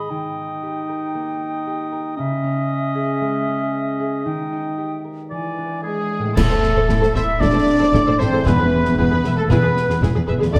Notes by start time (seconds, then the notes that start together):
Already playing: G#2 B3 G#4 D#5 B5
0.10 D#3 D#4 G5
0.63 G4
0.89 A#4
1.15 A#3
1.67 G4
1.92 A#4
2.16 C#3 C#4 D#5 E5
2.43 C#4
2.95 G#4
3.21 G#3
3.48 C#4
4.00 G#4
4.25 D#3 D#4 G5
4.52 D#4
4.78 G4
5.04 A#4
5.30 E3 E4 D5 G#5
5.58 D4
5.83 G#3 G#4 B4
6.11 G#4
6.19 A2
6.24 A3
6.28 E4
6.33 A2 E4 A4 C5
6.37 A1 A3 A4, concert bass drum, snare, crash
6.49 A2 A4 C5, snare
6.63 snare
6.75 A2 A4 C5
6.88 A1 A2 E4 A4, concert bass drum, snare
7.01 A2 A4 C5, snare
7.15 A1 A2 E4 A4 C5 E5, snare
7.39 A1 A2 D4 E4 A4 D5, concert bass drum, snare
7.53 A2 A4 C5
7.79 A2 A4 C5
7.92 A1 A2 E4 A4, concert bass drum, snare
8.06 A2 A4 C5
8.19 A1 A2 C4 A4 C5 E5, snare
8.28 E3
8.32 A2 G#3 A4 C5
8.37 E4
8.41 E1 B3 G#4 E5
8.46 E2 E4 G#4 B4, concert bass drum, snare
8.58 E2 G#4 B4
8.84 E2 G#4 B4, snare
8.97 E1 E2 B3 E4 G#4 B4, concert bass drum
9.10 E2 G#4 B4
9.23 E1 E2 G#4 B4 E5, snare
9.36 A3 A4
9.49 E1 E2 B3 E4 G#4 B4, concert bass drum, snare
9.63 E2 G#4 B4
9.77 snare
9.89 E2 G#4 B4, snare
10.01 E1 E2 E4 G#4, concert bass drum, snare
10.14 E2 G#4 B4
10.27 E1 E2 G#4 B4 E5
10.37 D3 G#4
10.41 E2 A3 B4, snare
10.46 F4
10.51 D2 D4 A4 D5 E5, concert bass drum, snare